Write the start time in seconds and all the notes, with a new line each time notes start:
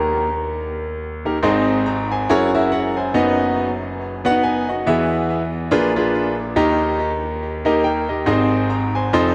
Already playing: D#2 D#3 A#3 D#4 G4 A#4
1.25 A#3 D#4 G4 A#4
1.43 G#1 G#2 C4 D#4 G#4 C5 D#5
1.86 A#5
2.11 C5 G#5
2.29 F#1 F#2 E4 F#4 G#4 A#4 C#5
2.54 E4 F#4 G#4 A#4 E5
2.72 A#4 F#5
2.97 C5 G#5
3.14 F#1 F#2 B3 D#4 F#4 B4 D#5
4.25 B3 D4 F#4 B4 F#5
4.30 D#4
4.43 B4 G#5
4.69 F#4 D#5
4.86 E2 E3 B3 E4 G#4 B4 E5
5.71 A#1 A#2 D4 F4 G#4 A#4 B4
5.96 D4 F4 G#4 A#4 B4
6.56 D#2 D#3 A#3 D#4 G4 A#4 D#5
7.65 A#3 D#4 G4 A#4 D#5
7.84 A#4 G5
8.09 G4 D#5
8.26 G#1 G#2 C4 D#4 G#4 A#4 D#5
8.32 C5
8.70 A#5
8.95 C5 G#5
9.13 F1 F2 D#4 F4 A4 C5 D#5